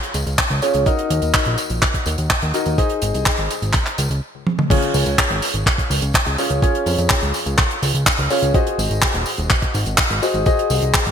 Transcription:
Already playing: C#4 F4 G#4 C#5
0.03 closed hi-hat
0.14 C#2, closed hi-hat, tambourine
0.26 C#2, closed hi-hat, tambourine
0.38 kick, clap, closed hi-hat
0.50 C#2, closed hi-hat
0.62 C#4 F4 G#4 C#5, closed hi-hat, tambourine
0.74 C#2, closed hi-hat, tambourine
0.86 D#4 F#4 A#4 D#5, kick, closed hi-hat, tambourine
0.99 closed hi-hat
1.10 D#2, closed hi-hat, tambourine
1.22 D#2, closed hi-hat, tambourine
1.34 kick, clap, closed hi-hat
1.45 A#1, closed hi-hat
1.58 closed hi-hat, tambourine
1.70 A#1, closed hi-hat, tambourine
1.82 kick, clap, closed hi-hat, tambourine
1.94 kick, closed hi-hat
2.06 D#2, closed hi-hat, tambourine
2.18 D#2, closed hi-hat, tambourine
2.30 kick, clap, closed hi-hat
2.42 D#2, closed hi-hat
2.54 D#4 F#4 A#4 D#5, closed hi-hat, tambourine
2.66 D#2, closed hi-hat, tambourine
2.78 D#4 G#4 C5 D#5, kick, closed hi-hat, tambourine
2.90 closed hi-hat
3.02 G#1, closed hi-hat, tambourine
3.14 C2, closed hi-hat, tambourine
3.26 kick, clap, closed hi-hat, tambourine
3.38 G#1, closed hi-hat
3.51 closed hi-hat, tambourine
3.62 G#1, closed hi-hat, tambourine
3.73 kick, clap, closed hi-hat, tambourine
3.86 clap, closed hi-hat
3.98 C#2, closed hi-hat, tambourine
4.10 C#2, closed hi-hat, tambourine
4.47 high tom
4.59 mid tom
4.70 C#4 F4 G#4 C#5, kick, closed hi-hat, crash, tambourine
4.82 closed hi-hat
4.94 C#2, open hi-hat, tambourine
5.06 C#2, closed hi-hat, tambourine
5.18 kick, clap, closed hi-hat, tambourine
5.30 G#1, closed hi-hat
5.42 open hi-hat, tambourine
5.54 G#1, closed hi-hat, tambourine
5.66 kick, clap, closed hi-hat
5.78 kick, closed hi-hat
5.90 C#2, open hi-hat, tambourine
6.02 C#2, closed hi-hat, tambourine
6.13 kick, clap, closed hi-hat, tambourine
6.26 C#2, closed hi-hat
6.38 C#4 F4 G#4 C#5, open hi-hat, tambourine
6.50 C#2, closed hi-hat, tambourine
6.62 C#4 F4 G#4 C#5, kick, closed hi-hat, tambourine
6.75 closed hi-hat
6.86 F2, open hi-hat, tambourine
6.98 F2, closed hi-hat, tambourine
7.10 kick, clap, closed hi-hat, tambourine
7.22 C#2, closed hi-hat
7.34 open hi-hat, tambourine
7.46 C#2, closed hi-hat, tambourine
7.58 kick, clap, closed hi-hat, tambourine
7.71 closed hi-hat
7.82 C#2, open hi-hat, tambourine
7.94 C#2, closed hi-hat, tambourine
8.06 kick, clap, closed hi-hat
8.18 C#2, closed hi-hat
8.30 C#4 F4 G#4 C#5, open hi-hat, tambourine
8.42 C#2, closed hi-hat, tambourine
8.54 F#4 G#4 C5 D#5, kick, closed hi-hat, tambourine
8.67 closed hi-hat
8.78 G#1, open hi-hat, tambourine
8.90 G#1, closed hi-hat, tambourine
9.02 kick, clap, closed hi-hat
9.14 D#1, closed hi-hat
9.26 open hi-hat, tambourine
9.37 D#1, closed hi-hat, tambourine
9.50 kick, clap, closed hi-hat
9.62 kick, closed hi-hat
9.74 G#1, open hi-hat, tambourine
9.86 G#1, closed hi-hat, tambourine
9.98 kick, clap, closed hi-hat
10.10 G#1, closed hi-hat
10.22 F#4 G#4 C5 D#5, open hi-hat, tambourine
10.34 G#1, closed hi-hat, tambourine
10.46 F#4 G#4 C5 D#5, kick, closed hi-hat, tambourine
10.59 closed hi-hat
10.70 C2, open hi-hat, tambourine
10.82 C2, closed hi-hat, tambourine
10.94 kick, clap, closed hi-hat, tambourine
11.06 G#1, closed hi-hat

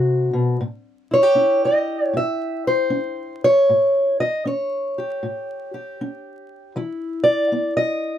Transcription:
Already playing: C3 F#4 A4
0.33 B2
0.61 A2
1.11 E4 C#5
1.23 G4
1.35 C#4 E4
1.65 D#5
2.13 A2 E5
2.67 C5
2.90 C#4
3.44 C#5
3.69 A2
4.20 D#5
4.45 C#4 C#5
4.98 G4
5.23 A2
5.74 G4
6.01 C#4
6.76 E3 E4
7.24 D5
7.52 B3
7.77 D#5

